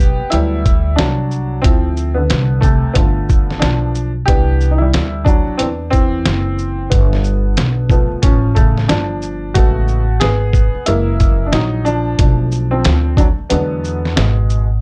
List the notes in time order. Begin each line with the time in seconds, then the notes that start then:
Already playing: B1 B3 G4
0.00 shaker
0.20 muted upright bass stroke
0.30 D2 F#3 G3 A3 B3 E4, closed hi-hat
0.66 kick, closed hi-hat, shaker
0.96 C2 F#3 D4, snare, closed hi-hat
1.31 shaker
1.64 D2 F3 C4 E4, kick, closed hi-hat
1.97 shaker
2.14 D3 B3
2.30 C2, snare, closed hi-hat
2.61 C3 A3, kick, closed hi-hat, shaker
2.84 muted upright bass stroke
2.93 G1 D3 A3 B3 F4, kick, closed hi-hat
3.29 kick, shaker
3.51 snare
3.59 B1 F3 D4, snare, closed hi-hat
3.95 shaker
4.26 C2 E3 B3 D4 G4, kick, closed hi-hat
4.61 shaker
4.71 D#4
4.78 G3 E4
4.94 D2, snare, closed hi-hat
5.25 F#3 D4, kick, shaker
5.47 muted upright bass stroke
5.58 E2 E3 B3 C4 D4, closed hi-hat
5.90 E3 C4, kick, closed hi-hat, shaker
6.26 F#1, snare, closed hi-hat
6.58 shaker
6.90 G1 D3 B3, kick, closed hi-hat
7.13 snare
7.24 shaker
7.57 B1, snare, closed hi-hat
7.90 F3 A3 B3, kick, shaker
8.11 muted upright bass stroke
8.22 A1 F3 C#4, kick, closed hi-hat
8.55 C#3 A3, kick, closed hi-hat, shaker
8.78 snare
8.88 G1 F3 D4, snare, closed hi-hat
9.22 shaker
9.54 A1 C#3 G#3 A3 B3 F#4, kick, closed hi-hat
9.88 shaker
10.20 G#1 B3 G#4, snare, closed hi-hat
10.53 kick, shaker
10.75 muted upright bass stroke
10.86 F#1 E3 G#3 A#3 E4, closed hi-hat
11.20 kick, closed hi-hat, shaker
11.46 D4
11.52 A#1 F#3 D#4, snare, closed hi-hat
11.85 F3 D4, shaker
12.19 B1 F3 A3 D4, kick, closed hi-hat
12.52 shaker
12.71 F3 C4
12.84 D2, snare, closed hi-hat
13.17 F#3 D4, kick, closed hi-hat, shaker
13.38 muted upright bass stroke
13.50 E2 D3 F#3 G#3 B3 D4, closed hi-hat
13.84 shaker
14.05 snare
14.16 G#1 B2 G#3, snare, closed hi-hat
14.50 shaker